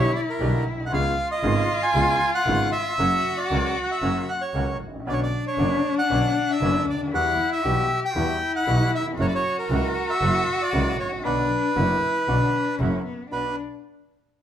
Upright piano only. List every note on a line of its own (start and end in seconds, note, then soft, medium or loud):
0.00 0.10 B2 medium
0.00 0.10 G3 medium
0.00 0.10 B3 medium
0.00 0.10 G4 medium
0.40 0.62 B1 medium
0.40 0.62 B2 medium
0.40 0.62 D3 medium
0.40 0.62 G3 medium
0.40 0.62 B3 medium
0.40 0.62 G4 medium
0.72 0.79 A#1 medium
0.80 0.86 B1 medium
0.86 0.92 C2 medium
0.93 1.14 C#2 medium
0.93 1.14 C#3 medium
0.93 1.14 G#3 medium
0.93 1.14 B3 medium
0.93 1.14 F4 medium
1.43 1.65 G#1 medium
1.43 1.65 G#2 medium
1.43 1.65 C#3 medium
1.43 1.65 G#3 medium
1.43 1.65 B3 medium
1.43 1.65 F4 medium
1.95 2.17 C#2 medium
1.95 2.17 C#3 medium
1.95 2.17 G#3 medium
1.95 2.17 B3 medium
1.95 2.17 F4 medium
2.47 2.69 G#1 medium
2.47 2.69 G#2 medium
2.47 2.68 C#3 medium
2.47 2.68 G#3 medium
2.47 2.69 B3 medium
2.47 2.69 F4 medium
2.98 3.20 F#2 medium
2.98 3.20 C#3 medium
2.98 3.20 F#3 medium
2.98 3.20 A#3 medium
2.98 3.20 F#4 medium
3.51 3.72 C#2 medium
3.51 3.72 C#3 medium
3.51 3.72 F#3 medium
3.51 3.73 A#3 medium
3.51 3.73 F#4 medium
4.02 4.24 F#2 medium
4.02 4.24 C#3 medium
4.02 4.24 F#3 medium
4.02 4.24 A#3 medium
4.02 4.24 F#4 medium
4.54 4.76 C#2 medium
4.54 4.76 C#3 medium
4.54 4.76 F#3 medium
4.54 4.76 A#3 medium
4.54 4.76 F#4 medium
4.87 4.93 G#1 soft
4.94 5.00 A1 medium
5.00 5.06 A#1 medium
5.07 5.28 B1 medium
5.07 5.28 B2 medium
5.07 5.28 D3 medium
5.07 5.28 B3 medium
5.07 5.28 C#4 medium
5.07 5.29 F#4 medium
5.58 5.80 F#1 medium
5.58 5.80 F#2 medium
5.58 5.80 D3 medium
5.58 5.80 B3 medium
5.58 5.80 C#4 medium
5.58 5.80 F#4 medium
6.10 6.32 B1 medium
6.10 6.32 B2 medium
6.10 6.32 D3 medium
6.10 6.32 B3 medium
6.10 6.32 C#4 medium
6.10 6.32 F#4 medium
6.61 6.83 F#1 medium
6.61 6.83 F#2 medium
6.61 6.83 D3 medium
6.61 6.83 B3 medium
6.61 6.83 C#4 medium
6.61 6.83 F#4 medium
6.94 7.00 C#2 medium
7.01 7.07 D2 medium
7.07 7.13 D#2 medium
7.13 7.35 E2 medium
7.13 7.35 E3 medium
7.13 7.35 G3 medium
7.13 7.35 B3 medium
7.13 7.35 F#4 medium
7.64 7.86 B1 medium
7.64 7.86 B2 medium
7.64 7.86 E3 medium
7.64 7.86 G3 medium
7.64 7.87 B3 medium
7.64 7.86 F#4 medium
8.16 8.38 E2 medium
8.16 8.38 E3 medium
8.16 8.37 G3 medium
8.16 8.38 B3 medium
8.16 8.38 F#4 medium
8.67 8.89 B1 medium
8.67 8.89 B2 medium
8.67 8.89 E3 medium
8.67 8.89 G3 medium
8.67 8.89 B3 medium
8.67 8.89 F#4 medium
8.99 9.06 D#2 soft
9.07 9.13 E2 medium
9.13 9.19 F2 medium
9.18 9.40 F#2 medium
9.18 9.40 C#3 medium
9.18 9.40 F#3 medium
9.18 9.40 A#3 medium
9.18 9.40 E4 medium
9.71 9.92 C#2 medium
9.71 9.92 C#3 medium
9.71 9.92 F#3 medium
9.71 9.92 A#3 medium
9.71 9.92 E4 medium
10.22 10.43 F#2 medium
10.22 10.43 C#3 medium
10.22 10.43 F#3 medium
10.22 10.43 A#3 medium
10.22 10.44 E4 medium
10.72 10.95 C#2 medium
10.72 10.94 C#3 medium
10.72 10.94 F#3 medium
10.72 10.95 A#3 medium
10.72 10.95 E4 medium
11.05 11.11 G#1 soft
11.12 11.18 A1 medium
11.18 11.24 A#1 medium
11.25 11.46 B1 medium
11.25 11.46 B2 medium
11.25 11.46 D3 medium
11.25 11.46 F#3 medium
11.25 11.46 B3 medium
11.25 11.46 F#4 medium
11.75 11.98 F#1 medium
11.75 11.98 F#2 medium
11.75 11.97 D3 medium
11.75 11.98 F#3 medium
11.75 11.98 B3 medium
11.75 11.98 F#4 medium
12.28 12.50 B1 medium
12.28 12.49 B2 medium
12.28 12.49 D3 medium
12.28 12.49 F#3 medium
12.28 12.49 B3 medium
12.28 12.49 F#4 medium
12.79 13.01 F#2 medium
12.79 13.01 C#3 medium
12.79 13.01 F#3 medium
12.79 13.01 A#3 medium
12.79 13.02 E4 medium
13.32 13.53 B1 medium
13.32 13.53 B3 medium
13.32 13.53 D4 medium
13.32 13.53 F#4 medium